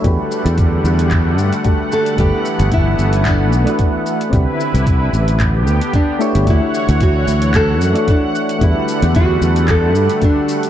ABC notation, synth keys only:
X:1
M:4/4
L:1/16
Q:"Swing 16ths" 1/4=112
K:D
V:1 name="Synth keys"
[A,DFGB]12 [A,DFGA]4 | [A,DEBf]8- [A,DEBf]3 [A,DEFB]4- [A,DEFB] | [=CDEGB]8 z6 [A,DEG^c] z | [A,DEFc]8- [A,DEFc]3 [A,DEFc]4- [A,DEFc] |
[G,A,DFB]12 [A,DFGA]4 |]